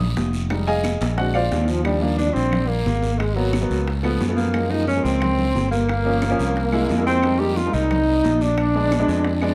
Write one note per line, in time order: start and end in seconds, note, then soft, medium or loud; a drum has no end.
0.00 0.14 A#1 medium
0.00 0.46 F3 medium
0.00 0.47 G3 medium
0.00 0.47 D4 medium
0.00 0.31 D#6 loud
0.00 high conga soft
0.00 low conga medium
0.16 0.96 F1 medium
0.16 high bongo medium
0.16 low bongo medium
0.16 high conga medium
0.16 short guiro medium
0.33 high bongo soft
0.33 short guiro medium
0.50 0.73 G3 medium
0.50 0.73 G#3 soft
0.50 0.73 D#4 medium
0.50 high bongo medium
0.50 long guiro medium
0.50 claves medium
0.67 1.14 G#4 medium
0.67 1.15 D#5 medium
0.67 1.14 F5 medium
0.67 1.14 G#5 loud
0.67 high bongo soft
0.67 high conga soft
0.84 high bongo medium
0.84 high conga medium
0.84 short guiro medium
0.84 claves medium
1.01 1.48 A#1 loud
1.01 high bongo soft
1.01 high conga loud
1.01 short guiro medium
1.16 1.65 G#3 medium
1.16 1.66 C4 medium
1.16 1.66 D4 medium
1.16 1.34 F#4 medium
1.16 1.34 F#5 loud
1.16 high bongo medium
1.16 high conga soft
1.16 long guiro medium
1.34 1.66 F4 medium
1.34 1.66 C5 medium
1.34 1.66 D5 medium
1.34 1.66 F5 loud
1.34 high conga soft
1.34 claves medium
1.51 2.30 D#2 medium
1.51 high bongo medium
1.51 low bongo medium
1.51 high conga medium
1.51 short guiro medium
1.64 1.70 D#3 medium
1.64 1.84 F3 loud
1.64 short guiro medium
1.68 1.85 F3 medium
1.68 high bongo soft
1.84 1.97 F3 medium
1.84 2.03 G3 medium
1.84 1.97 G3 medium
1.84 2.03 G3 medium
1.84 1.97 D4 medium
1.84 high bongo medium
1.84 high conga soft
1.84 long guiro medium
1.84 claves medium
2.01 2.19 F3 medium
2.01 2.20 G3 medium
2.01 2.18 A#3 medium
2.01 2.17 A#3 medium
2.01 2.20 D4 medium
2.01 high bongo soft
2.01 high conga soft
2.18 2.35 D4 medium
2.18 2.36 D4 medium
2.18 high bongo medium
2.18 high conga medium
2.18 short guiro medium
2.26 2.74 F3 medium
2.26 2.74 G3 medium
2.26 2.74 D4 medium
2.34 2.83 A#1 medium
2.34 2.70 C4 medium
2.34 high bongo soft
2.34 short guiro medium
2.52 high bongo medium
2.52 high conga soft
2.52 low conga medium
2.52 long guiro medium
2.52 claves medium
2.68 3.20 A#3 medium
2.68 3.21 A#3 medium
2.68 high bongo soft
2.68 high conga soft
2.86 3.64 G#1 medium
2.86 high bongo soft
2.86 low bongo medium
2.86 high conga medium
2.86 short guiro medium
3.02 high conga medium
3.02 short guiro medium
3.18 3.37 G#3 medium
3.18 3.38 G#3 medium
3.18 high bongo medium
3.18 high conga soft
3.18 long guiro medium
3.18 claves medium
3.35 3.86 F#3 medium
3.35 3.54 F#3 medium
3.35 3.87 F#3 medium
3.35 3.54 A#3 medium
3.35 3.54 B3 medium
3.35 high bongo soft
3.35 high conga soft
3.53 high bongo medium
3.53 high conga medium
3.53 short guiro medium
3.53 claves medium
3.61 3.87 F#3 medium
3.61 3.87 A#3 medium
3.61 3.87 B3 medium
3.70 4.17 C#2 medium
3.70 high bongo soft
3.70 high conga soft
3.70 short guiro medium
3.87 high bongo medium
3.87 high conga soft
3.87 long guiro medium
4.03 4.21 F3 medium
4.03 4.21 A3 medium
4.03 4.22 B3 loud
4.03 high bongo soft
4.03 high conga soft
4.03 claves medium
4.20 4.99 F#2 medium
4.20 high bongo soft
4.20 low bongo medium
4.20 high conga medium
4.20 short guiro medium
4.29 4.46 F3 medium
4.29 4.47 A3 medium
4.29 4.47 B3 medium
4.36 4.72 A#3 medium
4.36 4.73 A#3 medium
4.36 high conga medium
4.36 short guiro medium
4.54 4.66 F3 medium
4.54 4.66 G#3 medium
4.54 4.66 A#3 medium
4.54 high bongo medium
4.54 high conga soft
4.54 long guiro medium
4.54 claves medium
4.71 4.89 F3 medium
4.71 4.89 G#3 medium
4.71 4.89 A#3 medium
4.71 4.87 D#4 medium
4.71 4.87 D#4 loud
4.71 high bongo soft
4.71 high conga soft
4.87 5.06 C#4 medium
4.87 5.05 C#4 medium
4.87 high bongo medium
4.87 high conga medium
4.87 short guiro medium
4.96 5.43 F3 medium
4.96 5.43 G#3 medium
4.96 5.44 A#3 medium
5.04 5.52 C#2 medium
5.04 5.71 C4 medium
5.04 5.71 C4 loud
5.04 high bongo soft
5.04 short guiro medium
5.21 high bongo medium
5.21 high conga soft
5.21 low conga medium
5.21 long guiro medium
5.21 claves medium
5.39 high bongo soft
5.39 high conga soft
5.39 low conga medium
5.55 6.34 G1 medium
5.55 high bongo soft
5.55 low bongo medium
5.55 high conga medium
5.55 short guiro medium
5.71 7.02 A#3 loud
5.71 7.03 A#3 medium
5.71 high conga medium
5.71 short guiro medium
5.89 high bongo medium
5.89 high conga soft
5.89 long guiro medium
5.89 claves medium
6.05 6.23 F3 medium
6.05 6.23 A#3 medium
6.05 6.23 C#4 medium
6.05 high bongo soft
6.05 high conga soft
6.22 high bongo medium
6.22 high conga medium
6.22 short guiro medium
6.22 claves medium
6.29 6.55 F3 loud
6.29 6.55 A#3 medium
6.29 6.56 C#4 loud
6.39 6.86 C2 medium
6.39 high conga soft
6.39 short guiro medium
6.56 high bongo medium
6.56 high conga soft
6.56 long guiro medium
6.72 6.90 G#3 medium
6.72 6.91 A#3 medium
6.72 6.91 E4 loud
6.72 high bongo soft
6.72 high conga soft
6.72 claves medium
6.89 7.68 F2 medium
6.89 high bongo soft
6.89 low bongo medium
6.89 high conga medium
6.89 short guiro medium
6.97 7.15 G#3 medium
6.97 7.16 A#3 medium
6.97 7.16 E4 medium
7.07 7.42 C4 loud
7.07 7.41 C4 loud
7.07 high conga medium
7.07 short guiro medium
7.23 7.35 G3 medium
7.23 7.35 G#3 medium
7.23 7.36 A#3 medium
7.23 7.36 D#4 medium
7.23 high bongo medium
7.23 long guiro medium
7.23 claves medium
7.39 7.58 G3 medium
7.39 7.58 G#3 medium
7.39 7.58 A#3 medium
7.39 7.58 D#4 medium
7.39 7.58 G4 medium
7.39 7.59 G4 medium
7.39 high bongo soft
7.39 high conga soft
7.57 7.75 F4 loud
7.57 7.76 F4 medium
7.57 high bongo medium
7.57 high conga medium
7.57 short guiro medium
7.65 8.13 G3 medium
7.65 8.13 G#3 medium
7.65 8.13 A#3 medium
7.65 8.13 D#4 medium
7.73 8.21 C2 medium
7.73 8.43 D#4 medium
7.73 8.44 D#4 loud
7.73 high bongo soft
7.73 short guiro medium
7.91 high bongo medium
7.91 high conga soft
7.91 low conga medium
7.91 long guiro medium
7.91 claves medium
8.08 high bongo soft
8.08 high conga soft
8.24 9.03 A#1 medium
8.24 high bongo soft
8.24 low bongo medium
8.24 high conga medium
8.24 short guiro medium
8.41 9.49 D4 loud
8.41 high conga medium
8.41 short guiro medium
8.58 high bongo medium
8.58 high conga soft
8.58 long guiro medium
8.58 claves medium
8.75 8.92 G#3 medium
8.75 8.93 B3 medium
8.75 8.93 D4 medium
8.75 high bongo soft
8.75 high conga soft
8.91 high bongo medium
8.91 high conga medium
8.91 short guiro medium
8.91 claves medium
8.99 9.29 G#3 loud
8.99 9.29 B3 medium
8.99 9.30 D4 loud
9.08 9.54 F2 medium
9.08 high bongo soft
9.08 short guiro medium
9.24 high bongo medium
9.24 high conga soft
9.24 long guiro medium
9.41 9.54 G#3 medium
9.41 9.54 B3 medium
9.41 9.54 D4 loud
9.41 high bongo soft
9.41 high conga soft
9.41 claves medium